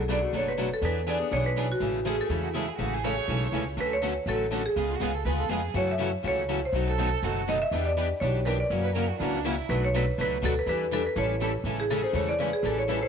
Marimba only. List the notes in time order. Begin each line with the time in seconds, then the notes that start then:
Already playing: A4
0.12 D5
0.37 C#5
0.48 B4
0.74 A4
0.85 B4
1.09 D5
1.33 C#5
1.46 B4
1.72 F#4
2.07 G#4
2.21 A4
3.81 B4
3.93 C#5
4.29 A4
4.66 G#4
5.77 C#5
5.91 E5
6.28 C#5
6.65 C5
7.49 D#5
7.62 E5
7.85 D5
8.20 C#5
8.45 A#4 B4
8.60 D5
9.70 B4
9.85 C#5
9.96 B4
10.21 B4
10.45 A4
10.59 B4
10.69 B4
10.93 A4
11.06 B4
11.18 C#5
11.80 G#4
11.91 A4
12.03 C5
12.15 C#5
12.29 D5
12.40 B4
12.53 G#4
12.66 A4
12.78 C#5
12.90 B4
13.03 C5